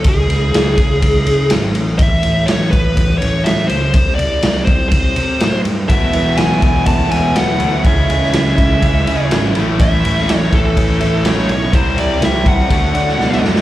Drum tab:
RD |x-x-x-x-x-x-x-x-|x-x-x-x-x-x-x-x-|x-x-x-x-x-x-x-x-|x-x-x-x-x-x-x-x-|
SD |----o-------o---|----o-------o---|----o-------o---|----o-------o---|
BD |o-----o-o-------|o-----o-o-------|o-----o-o-------|o-----o-o-------|

RD |x-x-x-x-x-x-x-x-|x-x-x-x-x-x-x-x-|x-x-x-x-x-x-----|
SD |---oo-------o---|---oo-------o---|----o------ooooo|
BD |o-----o-o-------|o-----o-o-------|o-----o-o-------|